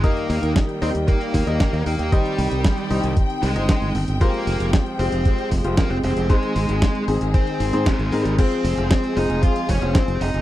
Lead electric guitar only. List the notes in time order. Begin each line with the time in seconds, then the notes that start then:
0.04 A#3 A#4
0.82 C4 C5
1.08 A#3 A#4
1.86 A#3 A#4
2.12 G3 G4
3.43 G#3 G#4
4.21 A#3 A#4
4.99 C4 C5
5.78 A#3 A#4
5.91 C4 C5
6.04 C4 C5
6.30 G#3 G#4
7.34 C4 C5
7.87 G#3 G#4
8.23 G4
8.39 C4 C5
8.91 C4 C5
9.17 D#4 D#5
9.43 F4 F5
9.69 C#4 C#5
9.95 C4 C5
10.21 D#4 D#5